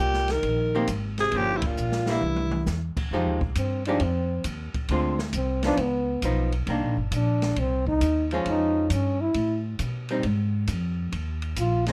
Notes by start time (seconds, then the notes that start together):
Already playing: A#2 G4
0.00 C2
0.14 snare
0.28 D#3 A#4, snare, ride
0.43 A#1, kick, ride
0.75 D#3 A#3 C4 G4
0.87 G#1, kick, hi-hat pedal, ride
1.18 C3 G#4, snare, ride
1.32 G1 A#2 F3 A#3, kick, ride
1.36 C#4 G4
1.53 G2 E4
1.62 A#2, kick, ride
1.66 F4
1.77 A#1, hi-hat pedal
1.92 snare
2.06 G2 G3 A#3 E4, snare
2.12 E4
2.21 C2, mid tom
2.36 mid tom
2.51 mid tom
2.66 E2, snare, hi-hat pedal
2.96 muted upright bass stroke, kick, crash
3.11 F2 F3 G#3 D#4 G4, kick
3.26 D#2
3.41 C2, kick
3.55 G2 C4, kick, hi-hat pedal, ride
3.85 F3 G#3 D4 D#4 G4, ride
4.00 F2 C4, kick, ride
4.44 D#2, kick, hi-hat pedal, ride
4.74 muted upright bass stroke, kick, ride
4.88 D2 D3 G#3 C4 F4, kick, ride
5.19 snare
5.33 C2 C4, kick, hi-hat pedal, ride
5.63 F3 B3 D4 D#4, snare, ride
5.77 C#2 B3, kick, ride
6.22 B1 F3 B3 D#4, kick, hi-hat pedal, ride
6.52 ride
6.67 C2 D#3 A#3 D4, kick, ride
6.82 A#1
6.97 G1
7.11 A#1 D4, kick, hi-hat pedal, ride
7.42 snare, ride
7.56 C2 C4, kick, ride
7.87 D#4, kick
8.01 D#2, kick, hi-hat pedal, ride
8.31 F3 G#3 C#4, ride
8.45 F2 D#4, kick, ride
8.90 G2 C#4, kick, hi-hat pedal, ride
9.21 E4
9.34 A2, kick, ride
9.79 B2, kick, hi-hat pedal, ride
10.09 G3 C4 D#4, ride
10.23 G#2, kick, ride
10.67 F2, kick, hi-hat pedal, ride
11.12 D#2, kick, ride
11.42 ride
11.56 A#1 F4, kick, hi-hat pedal, ride
11.86 D#3 G#3 C4 D4, snare, ride